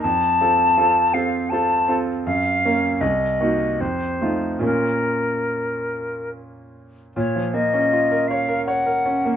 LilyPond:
<<
  \new Staff \with { instrumentName = "Flute" } { \time 3/4 \key bes \minor \tempo 4 = 79 a''4. f''8 a''8 r8 | f''4 ees''4 c''4 | bes'2 r4 | des''8 ees''4 f''8 ges''4 | }
  \new Staff \with { instrumentName = "Grand piano" } { \time 3/4 \key bes \minor f,8 <c' f' a'>8 <c' f' a'>8 <c' f' a'>8 <c' f' a'>8 <c' f' a'>8 | ges,8 <bes des' bes'>8 c,8 <bes ees' ges'>8 f,8 <a ees' f'>8 | <bes, bes des' f'>2. | bes,16 f16 bes16 des'16 f'16 bes'16 des''16 bes'16 des''16 bes'16 des'16 bes16 | }
>>